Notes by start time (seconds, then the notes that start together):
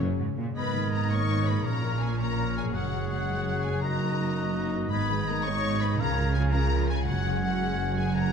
Already playing: F#2 C#3 F#3 F#4 F#5
0.00 F#1 F#2 C#3 F#3 C#5
0.20 G#2 F#5
0.38 A#2
0.56 G#1 G#2 A#2 B3 D#4 A#4 B4 D#5 B5 G#6
0.74 D#3 A#3 B3
0.93 A#3 B3 D#4 A#4 A#5
1.10 A#3 B3 D#4 C#5 C#6
1.28 B3 D#4 G#4
1.47 A#3 B3 B4 B5
1.64 A#1 A#2 F3 C#4 A#4 C#5 A#5 F6
1.83 F3 A#3 F4
2.00 F3 A#3 C#4 G#4 G#5
2.19 A#3 C#4 F4 A#4 C#5 A#5 F6
2.38 F3 C#4 F4
2.57 A#3 F4 G#4 G#5
2.74 F#1 F#2 F#3 G#3 C#4 F#4 G#4 C#5 F#5 F#6
2.93 C#3 G#3 F#4
3.11 F#3 G#3 C#4 F#4 F#5
3.29 G#3 C#4 F#4
3.47 F#3 C#4 F#4
3.64 G#3 F#4 G#4 G#5
3.82 F#2 F#3 A#3 D#4 F#4 A#4 D#5 A#5 F#6
4.02 F#3 A#3 F#4
4.20 F#3 A#3 D#4
4.38 A#3 D#4 F#4
4.56 F#3 D#4 F#4
4.74 A#3 F#4
4.91 G#1 G#2 G#3 B3 D#4 B4 D#5 B5 G#6
5.10 D#3 G#3 B3
5.28 G#3 B3 D#4 A#4 A#5
5.44 G#3 B3 C#5 C#6
5.64 B3 D#4 B4
5.80 G#3 B3 B4 B5
5.98 C#2 C#3 F3 C#4 F4 A#4 F5 A#5 G#6
6.19 G#3 G#4
6.34 F3 G#3 F4 G#4 G#5
6.51 G#3 F4 A#4 A#5
6.55 G#4
6.72 F3 F4
6.88 G#3 G#4 G#5
7.05 F#1 F#2 F#3 C#4 F#4 F#5 G#6
7.10 C#4 F#4
7.25 C#3 G#3 G#4
7.43 F#3 F#4 F#5
7.62 G#3 F#4 G#4
7.79 F#3 F#4 C#5
7.97 G#3 G#4 G#5
8.14 F#2 F#3 C#4 F#4 A#4 F#5 A#5 G#6